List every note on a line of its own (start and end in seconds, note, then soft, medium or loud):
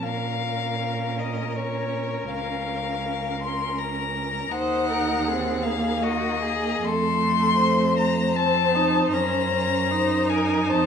0.03 2.26 A#2 soft
0.03 4.50 C#4 soft
0.03 4.49 A#4 soft
0.03 1.20 F5 medium
1.19 1.58 D#5 soft
1.56 2.29 C#5 medium
2.30 4.49 C#2 soft
2.30 3.39 F5 medium
3.42 3.79 C6 medium
3.78 4.53 A#5 medium
4.51 6.81 D#2 medium
4.51 5.30 D#4 soft
4.51 4.91 C5 medium
4.51 5.64 F#5 medium
4.89 5.29 A#4 medium
5.27 5.68 C4 medium
5.27 6.04 G#4 soft
5.63 6.88 A#3 medium
5.63 6.04 F5 medium
6.02 6.42 F#4 medium
6.02 6.86 D#5 medium
6.43 6.88 G#4 medium
6.84 9.07 F2 medium
6.84 8.37 A3 medium
6.84 7.60 A4 medium
6.84 7.97 C6 medium
7.61 9.86 C5 medium
7.97 8.38 A#5 medium
8.36 8.76 C4 medium
8.36 9.10 A5 medium
8.75 9.14 D#4 medium
9.11 10.72 F#2 medium
9.11 9.51 C#4 medium
9.11 10.30 A#5 medium
9.53 9.93 C#4 medium
9.91 10.86 D#4 medium
9.91 10.31 C5 medium
10.29 10.70 A#4 medium
10.29 10.71 G#5 medium
10.69 10.86 F2 medium
10.69 10.86 C5 medium
10.69 10.86 A5 medium